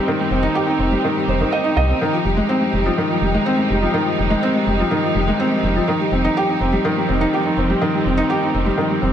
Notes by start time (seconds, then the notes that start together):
Already playing: D#3 G3 C4 D#4 G4
0.08 D#3
0.20 G3
0.30 F1 C4
0.43 D#4
0.55 G4
0.67 D#4
0.79 F1 C4
0.92 G3
1.04 D#3
1.16 G3
1.27 F1 C5
1.41 D#3
1.52 D#5
1.64 D#4
1.76 C2 D#5
1.89 C4
2.00 D#3 F3
2.13 F3
2.25 F1 G3
2.37 G#3
2.49 C4
2.61 G#3
2.73 F1 G3
2.86 F3
2.98 D#3
3.11 F3
3.21 F1 G3
3.34 G#3
3.46 C4
3.58 G#3
3.70 F1 G3
3.82 F3
3.94 D#3
4.05 F3
4.18 F1 G3
4.30 G#3
4.43 C4
4.55 G#3
4.67 F1 G3
4.80 F3
4.91 D#3
5.03 F3
5.15 F1 G3
5.28 G#3
5.40 C4
5.51 G#3
5.63 F1 G3
5.76 F3
5.88 D#3
6.00 G3
6.10 F1 C4
6.24 D#4
6.37 G4
6.49 D#4
6.60 F1 C4
6.72 G3
6.85 D#3
6.97 G3
7.09 F1 C4
7.21 D#4
7.34 G4
7.46 D#4
7.57 F1 C4
7.70 G3
7.81 D#3
7.94 G3
8.05 F1 C4
8.17 D#4
8.30 G4
8.43 D#4
8.54 F1 C4
8.66 G3
8.78 D#3
8.90 G3
9.02 F1 C4